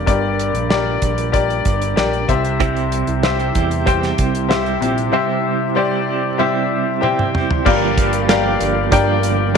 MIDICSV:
0, 0, Header, 1, 6, 480
1, 0, Start_track
1, 0, Tempo, 632244
1, 55, Time_signature, 4, 2, 24, 8
1, 7269, End_track
2, 0, Start_track
2, 0, Title_t, "Upright piano"
2, 0, Program_c, 0, 0
2, 0, Control_c, 0, 64, 127
2, 0, Note_on_c, 0, 67, 71
2, 0, Note_on_c, 0, 70, 66
2, 0, Note_on_c, 0, 74, 76
2, 0, Note_on_c, 0, 77, 75
2, 48, Note_off_c, 0, 67, 0
2, 48, Note_on_c, 0, 67, 72
2, 49, Note_off_c, 0, 70, 0
2, 49, Note_on_c, 0, 70, 68
2, 52, Note_on_c, 0, 43, 63
2, 55, Note_off_c, 0, 74, 0
2, 55, Note_on_c, 0, 74, 85
2, 439, Note_off_c, 0, 67, 0
2, 439, Note_off_c, 0, 70, 0
2, 442, Note_off_c, 0, 74, 0
2, 527, Note_on_c, 0, 67, 72
2, 534, Note_on_c, 0, 70, 64
2, 538, Note_on_c, 0, 74, 81
2, 743, Note_off_c, 0, 43, 0
2, 918, Note_off_c, 0, 67, 0
2, 922, Note_off_c, 0, 70, 0
2, 924, Note_off_c, 0, 74, 0
2, 1004, Note_on_c, 0, 67, 74
2, 1009, Note_on_c, 0, 70, 72
2, 1012, Note_on_c, 0, 74, 88
2, 1397, Note_off_c, 0, 67, 0
2, 1399, Note_off_c, 0, 70, 0
2, 1401, Note_off_c, 0, 74, 0
2, 1488, Note_on_c, 0, 67, 74
2, 1493, Note_on_c, 0, 70, 63
2, 1497, Note_on_c, 0, 74, 81
2, 1721, Note_off_c, 0, 67, 0
2, 1732, Note_on_c, 0, 67, 80
2, 1734, Note_off_c, 0, 70, 0
2, 1736, Note_off_c, 0, 74, 0
2, 1737, Note_on_c, 0, 72, 77
2, 1738, Note_on_c, 0, 48, 65
2, 1741, Note_on_c, 0, 76, 90
2, 1746, Control_c, 0, 64, 0
2, 1750, Note_off_c, 0, 77, 0
2, 1870, Control_c, 0, 64, 127
2, 2314, Note_off_c, 0, 67, 0
2, 2317, Note_off_c, 0, 72, 0
2, 2319, Note_off_c, 0, 76, 0
2, 2427, Note_off_c, 0, 48, 0
2, 2451, Note_on_c, 0, 67, 71
2, 2455, Note_on_c, 0, 72, 68
2, 2460, Note_on_c, 0, 76, 86
2, 2840, Note_off_c, 0, 67, 0
2, 2843, Note_off_c, 0, 72, 0
2, 2845, Note_off_c, 0, 76, 0
2, 2927, Note_on_c, 0, 67, 76
2, 2932, Note_on_c, 0, 72, 73
2, 2935, Note_on_c, 0, 79, 83
2, 3319, Note_off_c, 0, 67, 0
2, 3321, Note_off_c, 0, 72, 0
2, 3323, Note_off_c, 0, 79, 0
2, 3406, Note_on_c, 0, 67, 81
2, 3410, Note_on_c, 0, 72, 74
2, 3417, Note_on_c, 0, 76, 80
2, 3649, Note_on_c, 0, 48, 69
2, 3798, Note_off_c, 0, 67, 0
2, 3800, Note_off_c, 0, 72, 0
2, 3803, Note_off_c, 0, 76, 0
2, 3886, Note_on_c, 0, 67, 73
2, 3891, Note_on_c, 0, 72, 73
2, 3895, Note_on_c, 0, 76, 91
2, 4278, Note_off_c, 0, 67, 0
2, 4280, Note_off_c, 0, 72, 0
2, 4282, Note_off_c, 0, 76, 0
2, 4342, Note_off_c, 0, 48, 0
2, 4366, Note_on_c, 0, 67, 78
2, 4372, Note_on_c, 0, 72, 72
2, 4377, Note_on_c, 0, 74, 78
2, 4758, Note_off_c, 0, 67, 0
2, 4761, Note_off_c, 0, 72, 0
2, 4763, Note_off_c, 0, 74, 0
2, 4844, Note_on_c, 0, 67, 79
2, 4850, Note_on_c, 0, 72, 74
2, 4854, Note_on_c, 0, 76, 92
2, 5237, Note_off_c, 0, 67, 0
2, 5240, Note_off_c, 0, 72, 0
2, 5242, Note_off_c, 0, 76, 0
2, 5321, Note_on_c, 0, 67, 75
2, 5328, Note_on_c, 0, 72, 69
2, 5331, Note_on_c, 0, 79, 83
2, 5715, Note_off_c, 0, 67, 0
2, 5719, Note_off_c, 0, 72, 0
2, 5720, Note_off_c, 0, 79, 0
2, 5808, Note_on_c, 0, 67, 86
2, 5812, Note_on_c, 0, 70, 76
2, 5814, Note_on_c, 0, 43, 74
2, 5814, Note_on_c, 0, 74, 80
2, 5816, Note_on_c, 0, 77, 93
2, 5825, Control_c, 0, 64, 0
2, 5938, Control_c, 0, 64, 127
2, 6199, Note_off_c, 0, 67, 0
2, 6201, Note_off_c, 0, 70, 0
2, 6202, Note_off_c, 0, 74, 0
2, 6203, Note_off_c, 0, 77, 0
2, 6290, Note_on_c, 0, 67, 80
2, 6292, Note_on_c, 0, 70, 74
2, 6294, Note_on_c, 0, 74, 77
2, 6299, Note_on_c, 0, 77, 98
2, 6504, Note_off_c, 0, 43, 0
2, 6680, Note_off_c, 0, 67, 0
2, 6680, Note_off_c, 0, 70, 0
2, 6682, Note_off_c, 0, 74, 0
2, 6684, Note_off_c, 0, 77, 0
2, 6767, Note_on_c, 0, 67, 83
2, 6771, Note_on_c, 0, 70, 81
2, 6772, Note_on_c, 0, 74, 81
2, 6776, Note_on_c, 0, 79, 96
2, 7158, Note_off_c, 0, 67, 0
2, 7160, Note_off_c, 0, 70, 0
2, 7160, Note_off_c, 0, 74, 0
2, 7162, Note_off_c, 0, 79, 0
2, 7246, Note_on_c, 0, 67, 86
2, 7269, Note_off_c, 0, 67, 0
2, 7269, End_track
3, 0, Start_track
3, 0, Title_t, "Tonewheel organ"
3, 0, Program_c, 1, 16
3, 0, Note_on_c, 1, 55, 55
3, 0, Note_on_c, 1, 62, 51
3, 0, Note_on_c, 1, 70, 64
3, 1705, Note_off_c, 1, 62, 0
3, 1707, Note_off_c, 1, 70, 0
3, 1739, Note_on_c, 1, 64, 67
3, 1740, Note_on_c, 1, 48, 63
3, 5785, Note_off_c, 1, 55, 0
3, 5787, Note_off_c, 1, 64, 0
3, 5788, Note_off_c, 1, 48, 0
3, 5826, Note_on_c, 1, 65, 63
3, 5827, Note_on_c, 1, 70, 77
3, 5828, Note_on_c, 1, 55, 66
3, 7269, Note_off_c, 1, 55, 0
3, 7269, Note_off_c, 1, 65, 0
3, 7269, Note_off_c, 1, 70, 0
3, 7269, End_track
4, 0, Start_track
4, 0, Title_t, "Clean electric guitar"
4, 0, Program_c, 2, 27
4, 1973, Note_on_c, 2, 48, 76
4, 1975, Note_on_c, 2, 55, 76
4, 1978, Note_on_c, 2, 60, 79
4, 1981, Note_on_c, 2, 64, 84
4, 1984, Note_on_c, 2, 67, 80
4, 2447, Note_off_c, 2, 60, 0
4, 2449, Note_off_c, 2, 55, 0
4, 2452, Note_on_c, 2, 55, 60
4, 2454, Note_off_c, 2, 48, 0
4, 2454, Note_off_c, 2, 64, 0
4, 2456, Note_on_c, 2, 60, 63
4, 2463, Note_on_c, 2, 64, 67
4, 2465, Note_off_c, 2, 67, 0
4, 2468, Note_on_c, 2, 67, 63
4, 2688, Note_off_c, 2, 67, 0
4, 2694, Note_off_c, 2, 55, 0
4, 2695, Note_off_c, 2, 64, 0
4, 2696, Note_off_c, 2, 60, 0
4, 2697, Note_on_c, 2, 67, 59
4, 2704, Note_on_c, 2, 64, 49
4, 2712, Note_on_c, 2, 60, 42
4, 2929, Note_off_c, 2, 60, 0
4, 2933, Note_off_c, 2, 64, 0
4, 2934, Note_on_c, 2, 48, 85
4, 2936, Note_off_c, 2, 67, 0
4, 2938, Note_on_c, 2, 55, 86
4, 2938, Note_on_c, 2, 60, 85
4, 2942, Note_on_c, 2, 64, 88
4, 2945, Note_on_c, 2, 67, 85
4, 3407, Note_off_c, 2, 55, 0
4, 3407, Note_off_c, 2, 60, 0
4, 3410, Note_on_c, 2, 55, 64
4, 3412, Note_off_c, 2, 64, 0
4, 3415, Note_off_c, 2, 48, 0
4, 3416, Note_on_c, 2, 60, 69
4, 3421, Note_on_c, 2, 64, 68
4, 3423, Note_off_c, 2, 67, 0
4, 3426, Note_on_c, 2, 67, 69
4, 3648, Note_off_c, 2, 67, 0
4, 3653, Note_off_c, 2, 55, 0
4, 3655, Note_off_c, 2, 64, 0
4, 3656, Note_off_c, 2, 60, 0
4, 3657, Note_on_c, 2, 67, 53
4, 3664, Note_on_c, 2, 64, 50
4, 3673, Note_on_c, 2, 60, 43
4, 3889, Note_off_c, 2, 60, 0
4, 3890, Note_on_c, 2, 48, 75
4, 3891, Note_off_c, 2, 67, 0
4, 3892, Note_off_c, 2, 64, 0
4, 3895, Note_on_c, 2, 55, 79
4, 3898, Note_on_c, 2, 60, 90
4, 3900, Note_on_c, 2, 67, 82
4, 3901, Note_on_c, 2, 64, 80
4, 4369, Note_off_c, 2, 55, 0
4, 4370, Note_off_c, 2, 60, 0
4, 4372, Note_on_c, 2, 55, 69
4, 4373, Note_off_c, 2, 48, 0
4, 4375, Note_off_c, 2, 64, 0
4, 4379, Note_on_c, 2, 60, 67
4, 4385, Note_on_c, 2, 64, 66
4, 4388, Note_off_c, 2, 67, 0
4, 4391, Note_on_c, 2, 67, 68
4, 4605, Note_off_c, 2, 67, 0
4, 4614, Note_off_c, 2, 55, 0
4, 4614, Note_off_c, 2, 64, 0
4, 4614, Note_on_c, 2, 67, 58
4, 4617, Note_off_c, 2, 60, 0
4, 4624, Note_on_c, 2, 64, 46
4, 4629, Note_on_c, 2, 60, 47
4, 4853, Note_off_c, 2, 64, 0
4, 4854, Note_off_c, 2, 60, 0
4, 4854, Note_on_c, 2, 48, 74
4, 4855, Note_off_c, 2, 67, 0
4, 4857, Note_on_c, 2, 55, 84
4, 4863, Note_on_c, 2, 60, 89
4, 4863, Note_on_c, 2, 64, 91
4, 4866, Note_on_c, 2, 67, 87
4, 5328, Note_off_c, 2, 55, 0
4, 5330, Note_off_c, 2, 60, 0
4, 5331, Note_on_c, 2, 55, 63
4, 5335, Note_off_c, 2, 48, 0
4, 5335, Note_off_c, 2, 64, 0
4, 5339, Note_on_c, 2, 60, 70
4, 5343, Note_off_c, 2, 67, 0
4, 5344, Note_on_c, 2, 64, 74
4, 5346, Note_on_c, 2, 67, 69
4, 5569, Note_off_c, 2, 67, 0
4, 5573, Note_off_c, 2, 55, 0
4, 5577, Note_off_c, 2, 60, 0
4, 5577, Note_off_c, 2, 64, 0
4, 5578, Note_on_c, 2, 67, 54
4, 5586, Note_on_c, 2, 64, 46
4, 5595, Note_on_c, 2, 60, 43
4, 5813, Note_on_c, 2, 43, 79
4, 5815, Note_on_c, 2, 50, 86
4, 5817, Note_off_c, 2, 67, 0
4, 5818, Note_off_c, 2, 60, 0
4, 5820, Note_on_c, 2, 53, 83
4, 5821, Note_off_c, 2, 64, 0
4, 5821, Note_on_c, 2, 58, 89
4, 5824, Note_on_c, 2, 62, 86
4, 5826, Note_on_c, 2, 67, 89
4, 6047, Note_off_c, 2, 67, 0
4, 6054, Note_off_c, 2, 43, 0
4, 6055, Note_off_c, 2, 50, 0
4, 6055, Note_off_c, 2, 62, 0
4, 6056, Note_on_c, 2, 67, 55
4, 6058, Note_off_c, 2, 53, 0
4, 6058, Note_off_c, 2, 58, 0
4, 6064, Note_on_c, 2, 62, 57
4, 6068, Note_on_c, 2, 58, 44
4, 6071, Note_on_c, 2, 53, 46
4, 6281, Note_off_c, 2, 53, 0
4, 6285, Note_off_c, 2, 58, 0
4, 6290, Note_on_c, 2, 53, 63
4, 6291, Note_off_c, 2, 62, 0
4, 6295, Note_on_c, 2, 58, 72
4, 6296, Note_off_c, 2, 67, 0
4, 6300, Note_on_c, 2, 62, 69
4, 6305, Note_on_c, 2, 67, 80
4, 6768, Note_off_c, 2, 58, 0
4, 6771, Note_off_c, 2, 62, 0
4, 6771, Note_on_c, 2, 43, 96
4, 6772, Note_off_c, 2, 67, 0
4, 6773, Note_on_c, 2, 50, 94
4, 6774, Note_off_c, 2, 53, 0
4, 6777, Note_on_c, 2, 53, 87
4, 6777, Note_on_c, 2, 58, 92
4, 6780, Note_on_c, 2, 62, 104
4, 6781, Note_on_c, 2, 67, 93
4, 7245, Note_off_c, 2, 53, 0
4, 7245, Note_off_c, 2, 58, 0
4, 7250, Note_off_c, 2, 62, 0
4, 7253, Note_off_c, 2, 43, 0
4, 7254, Note_off_c, 2, 50, 0
4, 7255, Note_off_c, 2, 67, 0
4, 7269, End_track
5, 0, Start_track
5, 0, Title_t, "Analog synth bass"
5, 0, Program_c, 3, 38
5, 56, Note_on_c, 3, 31, 93
5, 391, Note_off_c, 3, 31, 0
5, 408, Note_on_c, 3, 34, 83
5, 746, Note_off_c, 3, 34, 0
5, 776, Note_on_c, 3, 34, 89
5, 1225, Note_off_c, 3, 34, 0
5, 1258, Note_on_c, 3, 31, 105
5, 1480, Note_off_c, 3, 31, 0
5, 1493, Note_on_c, 3, 34, 83
5, 1717, Note_off_c, 3, 34, 0
5, 1737, Note_on_c, 3, 36, 97
5, 2306, Note_off_c, 3, 36, 0
5, 2337, Note_on_c, 3, 36, 74
5, 2671, Note_off_c, 3, 36, 0
5, 2697, Note_on_c, 3, 40, 92
5, 3146, Note_off_c, 3, 40, 0
5, 3179, Note_on_c, 3, 36, 93
5, 3627, Note_off_c, 3, 36, 0
5, 3655, Note_on_c, 3, 34, 82
5, 3879, Note_off_c, 3, 34, 0
5, 5818, Note_on_c, 3, 31, 103
5, 6506, Note_off_c, 3, 31, 0
5, 6533, Note_on_c, 3, 31, 97
5, 6757, Note_off_c, 3, 31, 0
5, 6773, Note_on_c, 3, 31, 95
5, 7269, Note_off_c, 3, 31, 0
5, 7269, End_track
6, 0, Start_track
6, 0, Title_t, "Drums"
6, 55, Note_on_c, 9, 36, 91
6, 59, Note_on_c, 9, 42, 75
6, 131, Note_off_c, 9, 36, 0
6, 135, Note_off_c, 9, 42, 0
6, 299, Note_on_c, 9, 42, 72
6, 375, Note_off_c, 9, 42, 0
6, 415, Note_on_c, 9, 42, 41
6, 491, Note_off_c, 9, 42, 0
6, 535, Note_on_c, 9, 38, 95
6, 611, Note_off_c, 9, 38, 0
6, 773, Note_on_c, 9, 42, 69
6, 776, Note_on_c, 9, 36, 82
6, 849, Note_off_c, 9, 42, 0
6, 852, Note_off_c, 9, 36, 0
6, 895, Note_on_c, 9, 42, 47
6, 971, Note_off_c, 9, 42, 0
6, 1015, Note_on_c, 9, 36, 78
6, 1016, Note_on_c, 9, 42, 74
6, 1091, Note_off_c, 9, 36, 0
6, 1092, Note_off_c, 9, 42, 0
6, 1141, Note_on_c, 9, 42, 30
6, 1217, Note_off_c, 9, 42, 0
6, 1254, Note_on_c, 9, 42, 62
6, 1257, Note_on_c, 9, 36, 83
6, 1330, Note_off_c, 9, 42, 0
6, 1333, Note_off_c, 9, 36, 0
6, 1378, Note_on_c, 9, 42, 45
6, 1454, Note_off_c, 9, 42, 0
6, 1498, Note_on_c, 9, 38, 89
6, 1574, Note_off_c, 9, 38, 0
6, 1619, Note_on_c, 9, 42, 30
6, 1695, Note_off_c, 9, 42, 0
6, 1736, Note_on_c, 9, 36, 77
6, 1739, Note_on_c, 9, 42, 70
6, 1812, Note_off_c, 9, 36, 0
6, 1814, Note_off_c, 9, 42, 0
6, 1857, Note_on_c, 9, 42, 43
6, 1932, Note_off_c, 9, 42, 0
6, 1976, Note_on_c, 9, 42, 70
6, 1977, Note_on_c, 9, 36, 88
6, 2052, Note_off_c, 9, 42, 0
6, 2053, Note_off_c, 9, 36, 0
6, 2099, Note_on_c, 9, 42, 30
6, 2175, Note_off_c, 9, 42, 0
6, 2217, Note_on_c, 9, 42, 71
6, 2293, Note_off_c, 9, 42, 0
6, 2333, Note_on_c, 9, 42, 43
6, 2409, Note_off_c, 9, 42, 0
6, 2455, Note_on_c, 9, 38, 95
6, 2531, Note_off_c, 9, 38, 0
6, 2577, Note_on_c, 9, 42, 30
6, 2652, Note_off_c, 9, 42, 0
6, 2695, Note_on_c, 9, 42, 68
6, 2698, Note_on_c, 9, 36, 81
6, 2771, Note_off_c, 9, 42, 0
6, 2774, Note_off_c, 9, 36, 0
6, 2818, Note_on_c, 9, 42, 47
6, 2894, Note_off_c, 9, 42, 0
6, 2938, Note_on_c, 9, 36, 86
6, 2939, Note_on_c, 9, 42, 73
6, 3014, Note_off_c, 9, 36, 0
6, 3015, Note_off_c, 9, 42, 0
6, 3061, Note_on_c, 9, 38, 32
6, 3062, Note_on_c, 9, 42, 33
6, 3137, Note_off_c, 9, 38, 0
6, 3138, Note_off_c, 9, 42, 0
6, 3176, Note_on_c, 9, 42, 60
6, 3179, Note_on_c, 9, 36, 81
6, 3252, Note_off_c, 9, 42, 0
6, 3255, Note_off_c, 9, 36, 0
6, 3300, Note_on_c, 9, 42, 49
6, 3376, Note_off_c, 9, 42, 0
6, 3422, Note_on_c, 9, 38, 94
6, 3498, Note_off_c, 9, 38, 0
6, 3540, Note_on_c, 9, 42, 29
6, 3616, Note_off_c, 9, 42, 0
6, 3661, Note_on_c, 9, 42, 72
6, 3737, Note_off_c, 9, 42, 0
6, 3779, Note_on_c, 9, 42, 44
6, 3855, Note_off_c, 9, 42, 0
6, 5338, Note_on_c, 9, 48, 50
6, 5414, Note_off_c, 9, 48, 0
6, 5460, Note_on_c, 9, 47, 56
6, 5536, Note_off_c, 9, 47, 0
6, 5578, Note_on_c, 9, 45, 70
6, 5654, Note_off_c, 9, 45, 0
6, 5698, Note_on_c, 9, 43, 83
6, 5774, Note_off_c, 9, 43, 0
6, 5818, Note_on_c, 9, 36, 105
6, 5818, Note_on_c, 9, 49, 96
6, 5894, Note_off_c, 9, 36, 0
6, 5894, Note_off_c, 9, 49, 0
6, 6055, Note_on_c, 9, 36, 102
6, 6057, Note_on_c, 9, 42, 87
6, 6131, Note_off_c, 9, 36, 0
6, 6133, Note_off_c, 9, 42, 0
6, 6171, Note_on_c, 9, 42, 51
6, 6247, Note_off_c, 9, 42, 0
6, 6295, Note_on_c, 9, 38, 122
6, 6296, Note_on_c, 9, 42, 74
6, 6371, Note_off_c, 9, 38, 0
6, 6372, Note_off_c, 9, 42, 0
6, 6533, Note_on_c, 9, 42, 78
6, 6609, Note_off_c, 9, 42, 0
6, 6772, Note_on_c, 9, 42, 91
6, 6773, Note_on_c, 9, 36, 95
6, 6848, Note_off_c, 9, 42, 0
6, 6849, Note_off_c, 9, 36, 0
6, 7010, Note_on_c, 9, 42, 67
6, 7086, Note_off_c, 9, 42, 0
6, 7269, End_track
0, 0, End_of_file